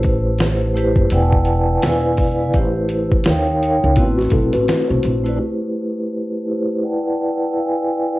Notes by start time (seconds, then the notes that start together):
Already playing: A1 A3 E4 G4 B4 C5
0.03 kick, closed hi-hat
0.38 snare, closed hi-hat
0.74 A3 E4 G4 B4, closed hi-hat
0.79 C5
0.96 F#1, kick
1.10 E1 E4 B4 D5 F#5 G5, closed hi-hat
1.14 G#5
1.21 A5
1.32 kick
1.45 closed hi-hat
1.82 E1 E4 B4 D5 F5, snare, closed hi-hat
1.87 G#5
2.17 kick, open hi-hat
2.38 E4 B4 D5 F5
2.42 G#5
2.54 A1 A3 E4 G4 B4, kick, closed hi-hat
2.58 C5
2.89 closed hi-hat
3.12 kick
3.24 D#2 D#4 A#4 C#5, snare, closed hi-hat
3.28 F5 G5
3.62 D#4 A#4 C#5 F5, closed hi-hat
3.66 G5
3.84 C#2
3.95 A1 A3 B3 C4 E4 F#4 B4, kick, closed hi-hat
4.18 C4 F#4, snare
4.30 B1 E4 A4, kick, closed hi-hat
4.53 A1 F#4 B4, closed hi-hat
4.68 snare, closed hi-hat
4.89 B1 F#4 C5
5.03 A#1, closed hi-hat
5.24 A3 E4 F#4 B4, closed hi-hat
5.28 D5
5.36 A3 E4 G4 B4
5.41 C5
6.46 A3 E4 G4 B4
6.50 C5
6.81 E4 B4 D5 F#5 G5
6.85 A5
7.03 E4 B4 D5 F#5 G5
7.07 A5
7.53 E4 B4 D5 F5 G5
7.64 G#5